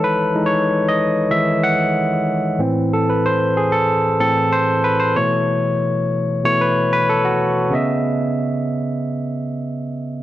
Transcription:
<<
  \new Staff \with { instrumentName = "Tine electric piano" } { \time 4/4 \key cis \minor \tempo 4 = 94 \tuplet 3/2 { b'4 cis''8~ cis''8 dis''4 } e''8 fis''8 r4 | r8 a'16 b'16 c''8 gis'16 a'8. a'8 c''8 b'16 c''16 | cis''4 r4 cis''16 b'8 b'16 a'16 fis'8. | <cis b dis'' e''>1 | }
  \new Staff \with { instrumentName = "Tine electric piano" } { \clef bass \time 4/4 \key cis \minor r8 <e gis dis'>4. <dis e gis>8 r4. | <a, e c'>4. r4 <a, e c'>8 r4 | <b, e a>8 r4. <b, e a>8 r4. | r1 | }
>>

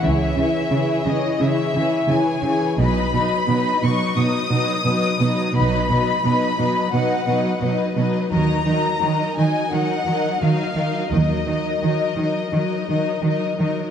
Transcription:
<<
  \new Staff \with { instrumentName = "Violin section" } { \time 4/4 \key ees \dorian \tempo 4 = 87 fes''4. ees''8 fes''4 aes''4 | b''4. des'''8 dis'''2 | b''2 fis''4 r4 | bes''4. aes''8 ges''4 f''4 |
ees''2.~ ees''8 r8 | }
  \new Staff \with { instrumentName = "Violin section" } { \time 4/4 \key ees \dorian <aes' des''>8 <aes' des''>8 <aes' des''>8 <aes' des''>8 <aes' des''>8 <aes' des''>8 <aes' des''>8 <aes' des''>8 | <b' dis''>8 <b' dis''>8 <b' dis''>8 <b' dis''>8 <b' dis''>8 <b' dis''>8 <b' dis''>8 <b' dis''>8 | <b' dis''>8 <b' dis''>8 <b' dis''>8 <b' dis''>8 <b' dis''>8 <b' dis''>8 <b' dis''>8 <b' dis''>8 | <bes' ees''>8 <bes' ees''>8 <bes' ees''>8 <bes' ees''>8 <bes' ees''>8 <bes' ees''>8 <bes' ees''>8 <bes' ees''>8 |
<bes' ees''>8 <bes' ees''>8 <bes' ees''>8 <bes' ees''>8 <bes' ees''>8 <bes' ees''>8 <bes' ees''>8 <bes' ees''>8 | }
  \new Staff \with { instrumentName = "Viola section" } { \time 4/4 \key ees \dorian <fes fes'>8 <fes fes'>8 <fes fes'>8 <fes fes'>8 <fes fes'>8 <fes fes'>8 <fes fes'>8 <fes fes'>8 | <fis dis'>8 <fis dis'>8 <fis dis'>8 <fis dis'>8 <fis dis'>8 <fis dis'>8 <fis dis'>8 <fis dis'>8 | <fis dis'>8 <fis dis'>8 <fis dis'>8 <fis dis'>8 <fis dis'>8 <fis dis'>8 <fis dis'>8 <fis dis'>8 | <ges ees'>8 <ges ees'>8 <ges ees'>8 <ges ees'>8 <ges ees'>8 <ges ees'>8 <ges ees'>8 <ges ees'>8 |
<ges ees'>8 <ges ees'>8 <ges ees'>8 <ges ees'>8 <ges ees'>8 <ges ees'>8 <ges ees'>8 <ges ees'>8 | }
  \new Staff \with { instrumentName = "Cello section" } { \clef bass \time 4/4 \key ees \dorian des8 des8 des8 des8 des8 des8 des8 des8 | b,8 b,8 b,8 b,8 b,8 b,8 b,8 b,8 | b,8 b,8 b,8 b,8 b,8 b,8 b,8 b,8 | ees8 ees8 ees8 ees8 ees8 ees8 ees8 ees8 |
ees8 ees8 ees8 ees8 ees8 ees8 ees8 ees8 | }
  \new Staff \with { instrumentName = "Double bass section" } { \clef bass \time 4/4 \key ees \dorian des,8 r2. r8 | b,,8 r2. r8 | b,,8 r2. r8 | ees,8 r2. r8 |
ees,8 r2. r8 | }
>>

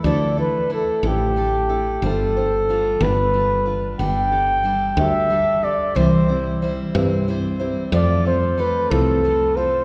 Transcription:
<<
  \new Staff \with { instrumentName = "Flugelhorn" } { \time 6/8 \key g \mixolydian \tempo 4. = 61 d''8 b'8 a'8 g'4. | a'4. b'4 r8 | g''4. e''4 d''8 | c''4. r4. |
d''8 c''8 b'8 a'4 c''8 | }
  \new Staff \with { instrumentName = "Steel-string acoustic guitar" } { \time 6/8 \key g \mixolydian <d f a d' e' a'>8 <a d' e' a'>8 <a d' e' a'>8 <d f a d' e' a'>8 <a d' e' a'>8 <a d' e' a'>8 | <g d' f' c''>8 <d' f' c''>8 <g d' f' c''>8 <g d' f' b'>8 <g d' f' b'>8 <d' f' b'>8 | <g d' g' a'>8 <d' g' a'>8 <g d' g' a'>8 <g d' g' a'>8 <g d' g' a'>8 <d' g' a'>8 | <c e g c' e' c''>8 <g c' e' c''>8 <g c' e' c''>8 <c e g c' e' c''>8 <g c' e' c''>8 <g c' e' c''>8 |
<f a c' f' a'>8 <c' f' a'>8 <a c' f' a'>8 <f a c' f' a'>8 <a c' f' a'>8 <c' f' a'>8 | }
  \new Staff \with { instrumentName = "Fretless electric bass" } { \clef bass \time 6/8 \key g \mixolydian d,4. a,,4. | g,,4. g,,4. | g,,4. d,4. | c,4. g,4. |
f,4. c,4. | }
>>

